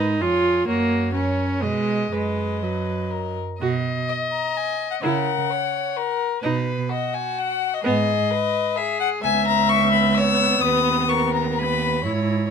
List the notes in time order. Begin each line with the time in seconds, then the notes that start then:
Already playing: G#2 D#4 A#4
0.20 F2 F4 G#4 C#5
0.67 F#2 A#3 F#4 C#5
1.14 C#4 A#4 C#5
1.62 B2 G#3 B4 D#5
2.12 F#2 G#3 B4 D#5
2.62 F#3 B4
3.11 A#4
3.61 B2 F#4 D#5
4.09 D#5
4.32 A#5
4.57 G#5
4.91 F#5
5.02 C#3 E4 A#4 F#5
5.50 C#5
5.97 A#4
6.43 B2 D#4 B4
6.89 F#4 D#5
7.14 G#5
7.39 F#5
7.74 D#5
7.83 G#2 B3 G#4 D#5
8.31 B4
8.76 G#4 E5
9.00 F#5
9.23 C#2 B3 E5 G#5
9.48 A#5
9.69 C#6
9.93 B5
10.15 C#5 E6
10.61 D#2 B4 D#6
11.09 A#4 C#6
11.34 A#5
11.59 B4 B5
12.05 G#2 E4 C#5